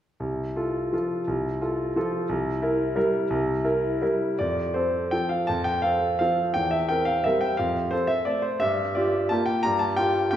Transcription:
0.20 C2
0.56 F4 A4
0.93 F3 F4 A4
1.27 C2
1.61 F4 A4
1.96 F3 F4 A4
2.29 C2
2.62 E4 A#4
2.96 G3 E4 A#4
3.30 C2
3.64 E4 A#4
4.02 G3 E4 A#4
4.39 F2 D5
4.74 C4 A4 C5
5.11 F3 C4 A4 G5
5.29 F5
5.47 F2 A5
5.64 G5
5.82 C4 A4 F5
6.19 F3 C4 A4 F5
6.54 E2 G5
6.71 E5
6.89 C4 A#4 G5
7.05 F5
7.24 G3 C4 A#4 E5
7.41 G5
7.57 F2 F5
7.91 C4 A4 C5
8.07 E5
8.25 A3 C4 A4 D5
8.42 C5
8.60 G2 E5
8.95 F4 G4 D5
9.29 A#3 F4 G4 A5
9.46 G5
9.63 G2 A#5
9.79 A5
9.97 F4 G4 G5
10.31 A#3 F4 G4 G5

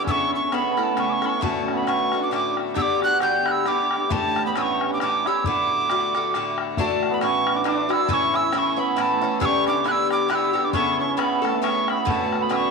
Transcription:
Already playing: A3 B3 D4 E4
0.04 C#3 C#4 E6, bodhran
0.08 B3 E4 A4 C#6
0.29 C#4
0.35 C#6
0.52 C#3 B3 E4 A4 B5, bodhran
0.69 B3
0.77 A3 B3 E4 A4 B5, bodhran
0.83 A5
0.95 C#3 B3 C#4 E4 A4, bodhran
0.99 C#6
1.09 C#4 C#6 D6
1.22 B3 C#4 E4 A4, bodhran
1.26 B5 C#6
1.40 A2 D3 A3 F#4 A5, bodhran
1.68 bodhran
1.74 B3 B5
1.82 C#4
1.87 A2 D3 A3 F#4 C#6, bodhran
2.12 D3 A3 F#4, bodhran
2.17 D4 E4
2.23 D6
2.29 A2 D3 A3 D4, bodhran
2.34 F#4 D6
2.57 bodhran
2.74 G2 D3 B3 D4 G4 E6, bodhran
2.82 D6
2.99 F#4, bodhran
3.04 F#6
3.20 G2 D3 B3 G4 G6, bodhran
3.45 E4 F#6, bodhran
3.52 E6
3.65 G2 D3 B3 D4 G4 D6, bodhran
3.81 D4
3.91 bodhran
3.96 D4
4.09 A2 E3 A3 C#4 G4 A5, bodhran
4.36 bodhran
4.45 B3 B5
4.55 A2 E3 C#4 G4 E6, bodhran
4.62 C#6
4.81 bodhran
4.90 D4 D6
5.00 A2 E3 C#4 D4 G4 D6, bodhran
5.25 E3 C#4 E4 G4 E6, bodhran
5.44 A2 D3 A3 D4 F#4 D6, bodhran
5.90 A2 D3 A3 F#4, bodhran
6.15 D3 A3 F#4, bodhran
6.34 A2 D3 A3 F#4, bodhran
6.58 bodhran
6.77 A2 E3 A3 D4 F#4 A5, bodhran
7.03 bodhran
7.10 B3 B5
7.21 A2 E3 C#4 F#4 C#6, bodhran
7.47 bodhran
7.55 D4 D6
7.64 A2 E3 D4 F#4 D6, bodhran
7.89 E3 D4 E4 F#4 E6, bodhran
8.09 A2 E3 C#4 E4 E6, bodhran
8.13 C#6
8.34 E4 E6, bodhran
8.52 A2 E3 C#4 E4 E6, bodhran
8.58 C#6
8.76 E3 B3 C#4 E4 B5
8.96 A2 E3 A3 C#4 E4 B5, bodhran
9.02 A5
9.21 E3 C#4 E4, bodhran
9.40 G2 D3 B3 C#4 G4 E6, bodhran
9.45 C#6
9.67 D4 D6, bodhran
9.84 G2 D3 B3 E4 G4 F#6, bodhran
9.91 E6
10.10 D6, bodhran
10.28 G2 D3 B3 E4 G4 F#6, bodhran
10.35 E6
10.53 D3 B3 G4, bodhran
10.64 D4 D6
10.73 C#3 B3 C#4 E4 A4 C#6, bodhran
11.00 C#4 C#6
11.17 C#3 B3 E4 A4 B5, bodhran
11.42 A3 B3 E4 A4 A5, bodhran
11.48 A3
11.54 A3
11.62 C#3 B3 C#4 E4 A4 C#6, bodhran
11.88 B3 B5, bodhran
12.05 A2 D3 A3 F#4 A5, bodhran
12.33 bodhran
12.41 B3 B5
12.49 A2 D3 A3 C#4 F#4 E6, bodhran
12.56 C#6

